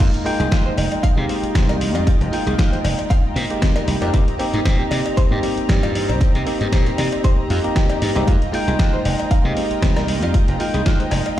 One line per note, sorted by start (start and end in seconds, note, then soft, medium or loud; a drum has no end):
0.00 0.23 G#3 medium
0.00 0.23 A#3 medium
0.00 0.23 D#4 medium
0.00 0.04 F4 medium
0.00 4.10 F4 medium
0.00 0.23 A#4 medium
0.00 4.10 D#5 medium
0.00 4.10 G5 medium
0.00 11.39 A#5 medium
0.00 kick loud
0.00 closed hi-hat medium
0.00 crash medium
0.14 closed hi-hat soft
0.24 1.13 G#3 medium
0.24 1.14 A#3 medium
0.24 1.14 D#4 medium
0.24 0.30 F4 medium
0.24 1.14 G5 loud
0.24 open hi-hat loud
0.40 0.47 C2 medium
0.40 0.46 G#4 medium
0.40 closed hi-hat medium
0.52 0.68 D#2 medium
0.52 0.62 F4 medium
0.52 kick loud
0.52 snare loud
0.52 closed hi-hat medium
0.66 0.72 C5 medium
0.78 0.86 F1 medium
0.78 open hi-hat loud
0.78 cowbell medium
0.92 closed hi-hat medium
0.92 cowbell medium
1.03 1.07 F5 medium
1.03 muted slap bass stroke soft
1.03 kick loud
1.03 closed hi-hat medium
1.16 1.25 C3 loud
1.16 2.29 G#3 medium
1.16 2.30 A#3 medium
1.16 2.30 D#4 medium
1.16 2.30 G4 medium
1.29 1.33 C4 medium
1.29 open hi-hat loud
1.43 muted slap bass stroke soft
1.43 closed hi-hat medium
1.55 1.95 C2 medium
1.55 1.66 C4 medium
1.55 kick loud
1.55 snare loud
1.55 closed hi-hat medium
1.69 1.75 A#4 medium
1.69 closed hi-hat soft
1.69 cowbell medium
1.81 open hi-hat loud
1.95 2.06 F2 medium
1.95 2.04 F4 medium
1.95 closed hi-hat medium
1.95 cowbell medium
2.07 2.11 F4 medium
2.07 muted slap bass stroke soft
2.07 kick loud
2.07 closed hi-hat medium
2.21 2.28 F1 medium
2.21 closed hi-hat soft
2.32 3.46 G#3 medium
2.32 3.47 A#3 medium
2.32 3.47 D#4 medium
2.32 2.37 F4 medium
2.32 3.47 G5 medium
2.32 open hi-hat loud
2.47 2.54 C2 medium
2.47 2.53 G#4 medium
2.47 closed hi-hat soft
2.58 2.75 D#2 medium
2.58 2.69 F4 medium
2.58 kick loud
2.58 snare loud
2.58 closed hi-hat medium
2.72 2.78 C5 medium
2.72 closed hi-hat soft
2.84 2.93 F1 medium
2.84 open hi-hat loud
2.84 cowbell medium
2.99 closed hi-hat soft
2.99 cowbell medium
3.10 3.14 F5 medium
3.10 kick loud
3.10 closed hi-hat medium
3.36 3.45 A#2 loud
3.36 3.40 C4 medium
3.36 open hi-hat loud
3.50 3.98 G#3 medium
3.50 3.98 A#3 medium
3.50 3.99 D#4 medium
3.50 3.99 G4 medium
3.50 closed hi-hat soft
3.62 3.72 C4 medium
3.62 kick loud
3.62 snare loud
3.62 closed hi-hat medium
3.76 3.82 A#4 medium
3.76 closed hi-hat soft
3.76 cowbell medium
3.88 3.96 C2 medium
3.88 open hi-hat loud
4.01 4.09 F2 medium
4.01 4.23 A#3 medium
4.01 4.23 C4 medium
4.01 4.23 D#4 medium
4.01 4.11 F4 medium
4.01 4.24 G4 loud
4.01 closed hi-hat medium
4.01 cowbell medium
4.13 4.22 C2 loud
4.13 4.18 C4 medium
4.13 8.23 C4 medium
4.13 8.23 G4 medium
4.13 11.39 D#5 medium
4.13 kick loud
4.13 closed hi-hat medium
4.28 closed hi-hat soft
4.39 5.27 A#3 medium
4.39 5.28 C4 medium
4.39 4.44 C4 medium
4.39 5.28 D#4 medium
4.39 5.28 G4 loud
4.39 open hi-hat loud
4.53 4.61 G2 medium
4.53 4.59 D#4 medium
4.53 closed hi-hat soft
4.65 4.82 A#2 medium
4.65 4.76 C4 medium
4.65 kick loud
4.65 snare loud
4.65 closed hi-hat medium
4.79 4.85 G4 medium
4.91 5.00 C3 medium
4.91 open hi-hat loud
4.91 cowbell medium
5.06 closed hi-hat soft
5.06 cowbell medium
5.17 5.21 C5 medium
5.17 muted slap bass stroke soft
5.17 kick loud
5.17 closed hi-hat medium
5.30 5.38 G2 loud
5.30 6.43 A#3 medium
5.30 6.44 C4 medium
5.30 6.44 D#4 medium
5.30 6.44 G4 medium
5.43 5.47 G3 medium
5.43 open hi-hat loud
5.57 muted slap bass stroke soft
5.57 closed hi-hat soft
5.69 6.11 G2 medium
5.69 5.79 G3 medium
5.69 kick loud
5.69 snare loud
5.69 closed hi-hat medium
5.83 5.89 F4 medium
5.83 closed hi-hat soft
5.83 cowbell medium
5.95 open hi-hat loud
6.09 6.20 C2 medium
6.09 6.18 C4 medium
6.09 closed hi-hat medium
6.09 cowbell medium
6.21 6.25 C4 medium
6.21 kick loud
6.21 closed hi-hat medium
6.35 6.42 C3 medium
6.35 closed hi-hat soft
6.46 7.60 A#3 medium
6.46 7.61 C4 medium
6.46 6.51 C4 medium
6.46 7.61 D#4 medium
6.46 7.61 G4 medium
6.46 open hi-hat loud
6.61 6.68 G2 medium
6.61 6.67 D#4 medium
6.61 closed hi-hat soft
6.72 6.89 A#2 medium
6.72 6.83 C4 medium
6.72 kick loud
6.72 snare loud
6.72 closed hi-hat medium
6.86 6.93 G4 medium
6.86 closed hi-hat soft
6.98 7.07 C3 medium
6.98 open hi-hat loud
6.98 cowbell medium
7.12 closed hi-hat soft
7.12 cowbell medium
7.24 7.29 C5 medium
7.24 kick loud
7.24 closed hi-hat medium
7.50 7.59 F2 medium
7.50 7.57 F4 medium
7.50 open hi-hat loud
7.64 8.12 A#3 medium
7.64 8.12 C4 medium
7.64 8.13 D#4 medium
7.64 8.13 G4 medium
7.64 closed hi-hat soft
7.76 7.86 G4 medium
7.76 kick loud
7.76 snare loud
7.76 closed hi-hat medium
7.90 7.96 G4 medium
7.90 closed hi-hat soft
7.90 cowbell medium
8.02 8.10 G2 medium
8.02 open hi-hat loud
8.15 8.23 C2 medium
8.15 8.37 G#3 medium
8.15 8.37 A#3 medium
8.15 8.22 C4 medium
8.15 8.37 D#4 medium
8.15 8.37 G4 medium
8.15 closed hi-hat soft
8.15 cowbell medium
8.27 8.36 F2 medium
8.27 11.39 F4 medium
8.27 8.32 F4 medium
8.27 11.39 G5 medium
8.27 kick loud
8.27 closed hi-hat medium
8.42 closed hi-hat soft
8.53 9.41 G#3 medium
8.53 9.42 A#3 medium
8.53 9.42 D#4 medium
8.53 8.58 F4 medium
8.53 9.42 G5 loud
8.53 open hi-hat loud
8.67 8.75 C2 medium
8.67 8.73 G#4 medium
8.67 closed hi-hat soft
8.79 8.96 D#2 loud
8.79 8.90 F4 medium
8.79 kick loud
8.79 snare loud
8.79 closed hi-hat medium
8.93 8.99 C5 medium
9.05 9.14 F1 medium
9.05 open hi-hat loud
9.05 cowbell medium
9.19 closed hi-hat soft
9.19 cowbell medium
9.31 9.35 F5 medium
9.31 muted slap bass stroke soft
9.31 kick loud
9.31 closed hi-hat medium
9.44 9.52 C3 loud
9.44 10.57 G#3 medium
9.44 10.57 A#3 medium
9.44 10.58 D#4 medium
9.44 10.58 G4 medium
9.57 9.61 C4 medium
9.57 open hi-hat loud
9.71 muted slap bass stroke soft
9.71 closed hi-hat soft
9.82 10.23 C2 medium
9.82 9.93 C4 medium
9.82 kick loud
9.82 snare loud
9.82 closed hi-hat medium
9.96 10.03 A#4 medium
9.96 cross-stick medium
9.96 closed hi-hat soft
9.96 cowbell medium
10.08 open hi-hat loud
10.23 10.34 F2 medium
10.23 10.31 F4 medium
10.23 closed hi-hat soft
10.23 cowbell medium
10.34 10.39 F4 medium
10.34 muted slap bass stroke soft
10.34 kick loud
10.34 closed hi-hat medium
10.48 10.56 F1 medium
10.48 closed hi-hat soft
10.59 11.39 G#3 medium
10.59 11.39 A#3 medium
10.59 11.39 D#4 medium
10.59 10.65 F4 medium
10.59 11.39 G5 medium
10.59 open hi-hat loud
10.74 10.81 C2 medium
10.74 10.80 G#4 medium
10.74 closed hi-hat soft
10.86 11.03 D#2 loud
10.86 10.96 F4 medium
10.86 kick loud
10.86 snare loud
10.86 closed hi-hat medium
11.00 11.06 C5 medium
11.00 closed hi-hat soft
11.11 11.20 F1 medium
11.11 cross-stick medium
11.11 open hi-hat loud
11.11 cowbell medium
11.26 closed hi-hat soft
11.26 cowbell medium